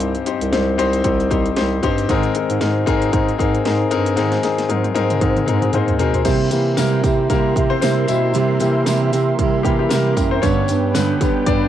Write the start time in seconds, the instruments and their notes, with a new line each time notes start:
Already playing: bass clarinet C2, grand piano G2 C4 D#4 G4 C5
0.00 closed hi-hat
0.15 closed hi-hat
0.26 grand piano C4 D#4 G4 C5, closed hi-hat
0.41 bass clarinet C2, closed hi-hat
0.52 bass clarinet C2, grand piano C4 D#4 G4 C5, snare, closed hi-hat
0.78 bass clarinet C2, grand piano C4 D#4 G4 C5, closed hi-hat
0.93 closed hi-hat
1.04 bass clarinet C2, grand piano C4 D#4 G4 C5, kick, closed hi-hat
1.20 closed hi-hat
1.30 bass clarinet C2, grand piano C4 D#4 G4 C5, kick, closed hi-hat
1.46 closed hi-hat
1.56 bass clarinet C2, grand piano C4 D#4 G4 C5, snare, closed hi-hat
1.83 bass clarinet G2, grand piano C4 D#4 G4 C5, kick, closed hi-hat
1.98 closed hi-hat
2.09 bass clarinet G#2, grand piano G#2 D#3 C4 D#4 G#4 A#4, kick, closed hi-hat
2.23 closed hi-hat
2.35 grand piano C4 D#4 G#4 A#4, closed hi-hat
2.50 bass clarinet G#2, closed hi-hat
2.61 bass clarinet G#2, grand piano C4 D#4 G#4 A#4, snare, closed hi-hat
2.86 bass clarinet G#2, grand piano C4 D#4 G#4 A#4, kick, closed hi-hat
3.02 closed hi-hat
3.12 bass clarinet G#2, grand piano C4 D#4 G#4 A#4, kick, closed hi-hat
3.29 closed hi-hat
3.38 bass clarinet G#2, grand piano C4 D#4 G#4 A#4, kick, closed hi-hat
3.55 closed hi-hat
3.65 bass clarinet G#2, grand piano C4 D#4 G#4 A#4, snare, closed hi-hat
3.91 bass clarinet G2, grand piano C4 D#4 G#4 A#4, closed hi-hat
4.06 closed hi-hat
4.16 grand piano G#2 D#3 C4 D#4 G#4 A#4, bass clarinet G#2, snare, closed hi-hat
4.32 snare, closed hi-hat
4.43 grand piano C4 D#4 G#4 A#4, snare, closed hi-hat
4.58 snare, closed hi-hat
4.69 bass clarinet G#2, grand piano C4 D#4 G#4 A#4, closed hi-hat, high tom
4.84 closed hi-hat, high tom
4.94 bass clarinet G#2, grand piano C4 D#4 G#4 A#4, closed hi-hat, high tom
5.10 closed hi-hat, mid tom
5.21 bass clarinet G#2, grand piano C4 D#4 G#4 A#4, kick, closed hi-hat, mid tom
5.36 closed hi-hat, mid tom
5.46 bass clarinet G#2, grand piano G#3 C4 D#4 G#4 A#4, closed hi-hat, mid tom
5.61 grand piano G#3 G#4, closed hi-hat, mid tom
5.73 bass clarinet G#2, grand piano A#3 C4 D#4 G#4 A#4 C5, closed hi-hat, mid tom
5.88 closed hi-hat, floor tom
5.99 bass clarinet B2, grand piano C4 D#4 G#4 A#4, closed hi-hat, floor tom
6.14 grand piano C4 C5, closed hi-hat, floor tom
6.25 bass clarinet C3, steel-string acoustic guitar C3 G3 A#3 E4 G4, grand piano C4 C5, analog synth pad A#4 E5 C6, kick, closed hi-hat, crash, tambourine
6.51 bass clarinet C3, grand piano E3 G3 A#3, steel-string acoustic guitar A#3 E4 G4, closed hi-hat, tambourine
6.77 steel-string acoustic guitar C3 G3 A#3 E4 G4, bass clarinet C3, grand piano A#3 A#4, snare, closed hi-hat, tambourine
7.04 bass clarinet C3, steel-string acoustic guitar A#3 E4 G4, kick, closed hi-hat, tambourine
7.29 bass clarinet C3, steel-string acoustic guitar G3 A#3 E4 G4, grand piano A#3 A#4, kick, closed hi-hat, tambourine
7.55 bass clarinet C3, steel-string acoustic guitar A#3 E4 G4, kick, closed hi-hat
7.70 grand piano C4 C5
7.81 steel-string acoustic guitar C3 G3 A#3 E4 G4, bass clarinet C3, grand piano C4 C5, snare, closed hi-hat, tambourine
8.07 bass clarinet B2, steel-string acoustic guitar A#3 E4 G4, grand piano E4 E5, closed hi-hat, tambourine
8.33 steel-string acoustic guitar C3 G3 A#3 E4 G4, bass clarinet C3, closed hi-hat, tambourine
8.59 bass clarinet C3, grand piano E3 G3 A#3, steel-string acoustic guitar A#3 E4 G4, closed hi-hat, tambourine
8.86 steel-string acoustic guitar C3 G3 A#3 E4 G4, bass clarinet C3, snare, closed hi-hat, tambourine
9.12 bass clarinet C3, steel-string acoustic guitar A#3 E4 G4, closed hi-hat, tambourine
9.39 bass clarinet C3, steel-string acoustic guitar G3 A#3 E4 G4, kick, closed hi-hat
9.63 bass clarinet C3, grand piano E3 G3 A#3 G4, steel-string acoustic guitar A#3 E4 G4, kick, closed hi-hat
9.79 grand piano G3 G4
9.89 steel-string acoustic guitar C3 G3 A#3 E4 G4, bass clarinet C3, grand piano A#3 A#4, snare, closed hi-hat, tambourine
10.17 bass clarinet F#2, steel-string acoustic guitar A#3 E4 G4, kick, closed hi-hat, tambourine
10.31 grand piano C4 C5
10.42 steel-string acoustic guitar G2 D3 G3 B3 D4 G4, bass clarinet G2, grand piano C#4 C#5, analog synth pad B4 G5, kick, closed hi-hat, tambourine
10.68 bass clarinet G2, steel-string acoustic guitar G3 B3 D4 G4, closed hi-hat, tambourine
10.94 steel-string acoustic guitar G2 D3 G3 B3 D4 G4, bass clarinet G2, grand piano B3 B4, snare, closed hi-hat, tambourine
11.20 grand piano D3 G3 B3, steel-string acoustic guitar G3 B3 D4 G4, kick, closed hi-hat, tambourine
11.46 bass clarinet G2, steel-string acoustic guitar G3 B3 D4 G4, grand piano D4 D5, kick, closed hi-hat